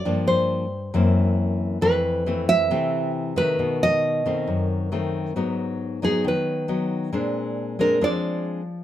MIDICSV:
0, 0, Header, 1, 3, 480
1, 0, Start_track
1, 0, Tempo, 442804
1, 51, Time_signature, 4, 2, 24, 8
1, 9580, End_track
2, 0, Start_track
2, 0, Title_t, "Nylon-string guitar"
2, 0, Program_c, 0, 24
2, 0, Note_on_c, 0, 74, 88
2, 263, Note_off_c, 0, 74, 0
2, 298, Note_on_c, 0, 72, 76
2, 1210, Note_off_c, 0, 72, 0
2, 1974, Note_on_c, 0, 71, 86
2, 2648, Note_off_c, 0, 71, 0
2, 2697, Note_on_c, 0, 76, 110
2, 3369, Note_off_c, 0, 76, 0
2, 3659, Note_on_c, 0, 71, 89
2, 4147, Note_off_c, 0, 71, 0
2, 4151, Note_on_c, 0, 75, 109
2, 5056, Note_off_c, 0, 75, 0
2, 6552, Note_on_c, 0, 68, 79
2, 6773, Note_off_c, 0, 68, 0
2, 6808, Note_on_c, 0, 71, 67
2, 7235, Note_off_c, 0, 71, 0
2, 8463, Note_on_c, 0, 70, 77
2, 8688, Note_off_c, 0, 70, 0
2, 8715, Note_on_c, 0, 74, 83
2, 9148, Note_off_c, 0, 74, 0
2, 9580, End_track
3, 0, Start_track
3, 0, Title_t, "Nylon-string guitar"
3, 0, Program_c, 1, 24
3, 56, Note_on_c, 1, 43, 62
3, 60, Note_on_c, 1, 53, 50
3, 65, Note_on_c, 1, 58, 58
3, 66, Note_on_c, 1, 62, 54
3, 699, Note_off_c, 1, 53, 0
3, 700, Note_off_c, 1, 58, 0
3, 703, Note_off_c, 1, 62, 0
3, 989, Note_off_c, 1, 43, 0
3, 1016, Note_on_c, 1, 42, 77
3, 1021, Note_on_c, 1, 52, 58
3, 1021, Note_on_c, 1, 58, 60
3, 1030, Note_on_c, 1, 60, 60
3, 1936, Note_off_c, 1, 52, 0
3, 1938, Note_off_c, 1, 58, 0
3, 1939, Note_off_c, 1, 60, 0
3, 1949, Note_off_c, 1, 42, 0
3, 1966, Note_on_c, 1, 41, 60
3, 1973, Note_on_c, 1, 52, 50
3, 1980, Note_on_c, 1, 60, 57
3, 1981, Note_on_c, 1, 57, 51
3, 2412, Note_off_c, 1, 52, 0
3, 2412, Note_off_c, 1, 57, 0
3, 2416, Note_off_c, 1, 60, 0
3, 2455, Note_on_c, 1, 52, 60
3, 2459, Note_on_c, 1, 57, 64
3, 2468, Note_on_c, 1, 60, 67
3, 2893, Note_off_c, 1, 52, 0
3, 2896, Note_off_c, 1, 57, 0
3, 2898, Note_off_c, 1, 60, 0
3, 2904, Note_off_c, 1, 41, 0
3, 2934, Note_on_c, 1, 48, 80
3, 2937, Note_on_c, 1, 52, 59
3, 2940, Note_on_c, 1, 57, 59
3, 2942, Note_on_c, 1, 60, 69
3, 3613, Note_off_c, 1, 52, 0
3, 3615, Note_off_c, 1, 60, 0
3, 3616, Note_off_c, 1, 57, 0
3, 3645, Note_on_c, 1, 51, 68
3, 3654, Note_on_c, 1, 57, 58
3, 3867, Note_off_c, 1, 48, 0
3, 3891, Note_on_c, 1, 47, 63
3, 4568, Note_off_c, 1, 51, 0
3, 4572, Note_off_c, 1, 57, 0
3, 4614, Note_on_c, 1, 51, 54
3, 4621, Note_on_c, 1, 57, 54
3, 4623, Note_on_c, 1, 60, 58
3, 4825, Note_off_c, 1, 47, 0
3, 4850, Note_on_c, 1, 42, 65
3, 5292, Note_off_c, 1, 51, 0
3, 5293, Note_off_c, 1, 57, 0
3, 5296, Note_off_c, 1, 60, 0
3, 5331, Note_on_c, 1, 51, 57
3, 5337, Note_on_c, 1, 57, 58
3, 5337, Note_on_c, 1, 60, 57
3, 5784, Note_off_c, 1, 42, 0
3, 5790, Note_off_c, 1, 51, 0
3, 5791, Note_off_c, 1, 57, 0
3, 5793, Note_off_c, 1, 60, 0
3, 5808, Note_on_c, 1, 44, 59
3, 5812, Note_on_c, 1, 54, 48
3, 5815, Note_on_c, 1, 59, 54
3, 5821, Note_on_c, 1, 63, 58
3, 6490, Note_off_c, 1, 54, 0
3, 6493, Note_off_c, 1, 59, 0
3, 6495, Note_off_c, 1, 63, 0
3, 6528, Note_on_c, 1, 54, 50
3, 6535, Note_on_c, 1, 59, 53
3, 6537, Note_on_c, 1, 63, 57
3, 6744, Note_off_c, 1, 44, 0
3, 6769, Note_on_c, 1, 51, 73
3, 7209, Note_off_c, 1, 54, 0
3, 7213, Note_off_c, 1, 59, 0
3, 7213, Note_off_c, 1, 63, 0
3, 7243, Note_on_c, 1, 54, 55
3, 7248, Note_on_c, 1, 59, 53
3, 7250, Note_on_c, 1, 63, 54
3, 7687, Note_off_c, 1, 54, 0
3, 7687, Note_off_c, 1, 59, 0
3, 7690, Note_off_c, 1, 63, 0
3, 7704, Note_off_c, 1, 51, 0
3, 7723, Note_on_c, 1, 46, 58
3, 7725, Note_on_c, 1, 56, 58
3, 7730, Note_on_c, 1, 60, 52
3, 7736, Note_on_c, 1, 62, 59
3, 8407, Note_off_c, 1, 56, 0
3, 8411, Note_off_c, 1, 60, 0
3, 8412, Note_off_c, 1, 62, 0
3, 8444, Note_on_c, 1, 56, 47
3, 8450, Note_on_c, 1, 60, 48
3, 8457, Note_on_c, 1, 62, 56
3, 8647, Note_off_c, 1, 56, 0
3, 8650, Note_off_c, 1, 60, 0
3, 8654, Note_off_c, 1, 62, 0
3, 8662, Note_off_c, 1, 46, 0
3, 8686, Note_on_c, 1, 53, 71
3, 8687, Note_on_c, 1, 56, 57
3, 8690, Note_on_c, 1, 60, 55
3, 8698, Note_on_c, 1, 62, 63
3, 9331, Note_off_c, 1, 56, 0
3, 9334, Note_off_c, 1, 60, 0
3, 9337, Note_off_c, 1, 62, 0
3, 9580, Note_off_c, 1, 53, 0
3, 9580, End_track
0, 0, End_of_file